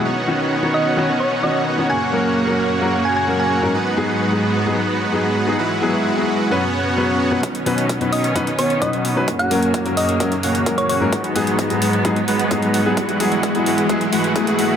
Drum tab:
HH |----------------|----------------|----------------|----------------|
BD |----------------|----------------|----------------|----------------|

HH |xxoxxxoxxxoxxxo-|xxoxxxoxxxoxxxo-|xxoxxxoxxxoxxxo-|xxoxxxoxxxoxxxo-|
BD |o---o---o---o---|o---o---o---o---|o---o---o---o---|o---o---o---o---|